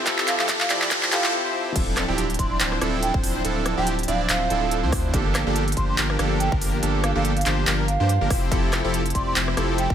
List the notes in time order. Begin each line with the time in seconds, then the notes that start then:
Already playing: F3 E4 G4 A4 G5 A5, riser
0.05 F1 F3 C4 E4 G4 A4, kick, clap, closed hi-hat
0.18 clap
0.28 F5, clap, closed hi-hat
0.39 F1 F3 C4 E4 G4 A4 F5, clap
0.49 kick, clap, closed hi-hat
0.60 F5, clap
0.70 F1 F3 C4 E4 G4 D5, clap, closed hi-hat
0.82 clap
0.91 F1 F3 C4 E4 G4 C5, kick, clap, closed hi-hat
1.03 clap
1.11 F1 F3 C4 E4 G4 A4 C5 F5, clap, closed hi-hat
1.22 F3 E4 G4 C5, clap
1.45 F3 C4 E4 G4 C5
1.75 D1 F3 C4 D4 E4 A4, kick, closed hi-hat, crash, impact
1.97 cross-stick, clap, closed hi-hat
2.08 D1 F3 C4 D4 E4 G4
2.18 closed hi-hat
2.30 closed hi-hat
2.34 closed hi-hat
2.39 D1 F3 C4 D4 E4 D5 C6, kick, closed hi-hat
2.51 C6
2.60 D1 F3 C4 D4 E4 C5, clap, closed hi-hat
2.72 cross-stick
2.81 D1 F3 C4 D4 E4 A4, cross-stick, closed hi-hat
3.02 G5, closed hi-hat
3.14 D1 F3 C4 D4 E4 C5, kick
3.24 open hi-hat
3.45 D1 F3 C4 D4 E4 A4, closed hi-hat
3.66 cross-stick, closed hi-hat
3.77 D1 F3 C4 D4 E4 G4 G5
3.87 closed hi-hat
3.99 closed hi-hat
4.03 closed hi-hat
4.08 D1 F3 C4 D4 E4 D5 F5, closed hi-hat
4.29 D1 F3 C4 D4 E4 C5 F5, clap, closed hi-hat
4.50 D1 F3 C4 D4 E4 A4, closed hi-hat
4.71 closed hi-hat
4.83 D2 F3 C4 D4 E4 C5
4.92 kick, cross-stick, open hi-hat
5.14 G1 F3 A#3 D4 G4 A4, kick, closed hi-hat
5.35 cross-stick, clap, closed hi-hat
5.46 G1 F3 A#3 D4 G4 A4
5.56 closed hi-hat
5.68 closed hi-hat
5.72 closed hi-hat
5.77 G1 F3 A#3 D4 G4 C5 C6, kick, closed hi-hat
5.89 C6
5.98 G1 F3 A#3 D4 G4 A#4, clap, closed hi-hat
6.10 cross-stick
6.19 G1 F3 A#3 D4 G4 A4, cross-stick, closed hi-hat
6.40 G5, closed hi-hat
6.52 G1 F3 A#3 D4 G4 A#4, kick
6.61 open hi-hat
6.82 G1 F3 A#3 D4 G4 A4, closed hi-hat
7.04 F5, cross-stick, closed hi-hat
7.15 G1 F3 A#3 D4 G4 A4 F5
7.25 closed hi-hat
7.37 F5, closed hi-hat
7.41 closed hi-hat
7.46 G1 F3 A#3 D4 G4 C5, clap, closed hi-hat
7.67 G1 F3 A#3 D4 G4 A#4, clap, closed hi-hat
7.88 F5, closed hi-hat
8.00 G2 F3 A#3 D4 G4 C5
8.09 closed hi-hat
8.21 G1 F3 A#3 D4 G4 A#4
8.30 F1 F3 C4 E4 G4 C5, kick, cross-stick, open hi-hat
8.52 F1 F3 C4 E4 G4 A4, kick, closed hi-hat
8.73 cross-stick, clap, closed hi-hat
8.84 F1 F3 C4 E4 G4 A4
8.94 closed hi-hat
9.06 closed hi-hat
9.10 closed hi-hat
9.15 F1 F3 C4 E4 G4 D5 C6, kick, closed hi-hat
9.27 C6
9.36 F1 F3 C4 E4 G4 C5, clap, closed hi-hat
9.48 cross-stick
9.57 F1 F3 C4 E4 G4 A4, cross-stick, closed hi-hat
9.78 G5, closed hi-hat
9.90 F1 F3 C4 E4 G4 C5, kick